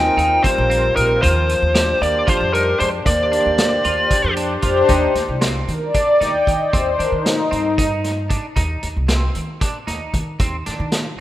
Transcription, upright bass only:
0.17 0.38 D#2 medium
0.58 0.89 A#1 medium
0.96 1.17 A#1 medium
1.23 1.54 D#2 loud
1.62 1.93 D#2 medium
2.01 2.22 D#2 medium
2.40 2.71 F2 medium
2.81 3.01 F2 medium
3.06 3.37 D#2 loud
3.46 3.77 D#2 medium
3.85 4.06 D#2 medium
4.24 4.55 F2 medium
4.63 4.84 F2 medium
4.89 5.10 D#2 medium
5.15 5.26 D#2 medium
5.28 5.60 C2 medium
5.68 5.89 D#3 medium
6.21 6.31 D#2 medium
6.47 6.68 D#3 medium
6.74 6.94 D#2 medium
6.99 7.10 D#3 medium
7.12 7.43 D#3 medium
7.52 8.35 G2 medium
8.56 8.77 D#2 medium
8.83 8.93 D#2 medium
8.96 9.27 C2 medium
9.36 9.56 D#3 medium
9.88 9.98 D#2 medium
10.14 10.35 D#3 medium
10.39 10.60 D#2 medium
10.67 10.77 D#3 medium
10.80 11.11 D#3 medium

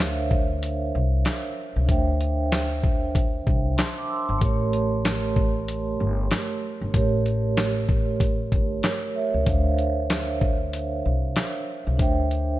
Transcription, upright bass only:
0.00 0.90 D2 loud
0.95 1.22 C2 medium
1.76 1.89 C2 medium
1.89 3.43 D2 loud
3.47 3.74 C2 medium
4.29 4.42 G1 medium
4.42 5.96 A1 loud
6.00 6.27 G1 medium
6.81 6.93 G1 medium
6.95 8.48 A1 loud
8.52 8.80 G1 medium
9.34 9.45 C#2 medium
9.47 11.01 D2 loud
11.06 11.33 C2 medium
11.87 12.00 C2 medium
12.00 12.60 D2 loud

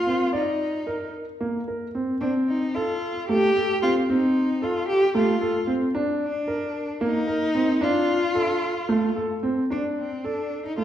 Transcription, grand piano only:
0.07 0.25 C4 medium
0.33 0.70 D5 medium
0.87 1.24 A#4 medium
1.41 1.59 A#3 medium
1.68 1.87 A#4 medium
1.95 2.14 C4 medium
2.21 2.59 C4 medium
2.75 3.13 A4 medium
3.29 3.48 A3 medium
3.56 3.75 A4 medium
3.83 4.01 C4 medium
4.10 4.46 C4 medium
4.62 4.99 A4 medium
5.15 5.33 A3 medium
5.41 5.60 A4 medium
5.67 5.86 C4 medium
5.95 6.32 D4 medium
6.48 6.85 A#4 medium
7.01 7.20 A#3 medium
7.27 7.46 A#4 medium
7.55 7.73 C4 medium
7.81 8.18 D4 medium
8.35 8.72 A4 medium
8.89 9.08 A3 medium
9.16 9.35 A4 medium
9.43 9.62 C4 medium
9.70 10.08 D4 medium
10.24 10.62 A4 medium
10.78 10.84 A3 medium

